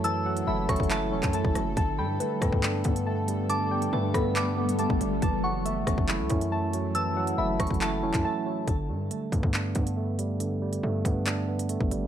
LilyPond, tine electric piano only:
\new Staff \with { instrumentName = "Tine electric piano" } { \time 4/4 \key g \lydian \tempo 4 = 139 <e fis a cis' e'>8 fis8 a8 cis'8 e'8 cis'8 a8 fis8 | d8 g8 a8 b8 d'8 b8 a8 g8 | d8 g8 a8 b8 d'8 b8 a8 g8 | e8 fis8 a8 cis'8 e'8 cis'8 a8 fis8 |
e8 fis8 a8 cis'8 e'8 cis'8 a8 fis8 | d8 g8 a8 b8 d'8 b8 a8 g8 | d8 g8 a8 b8 d'8 b8 a8 g8 | }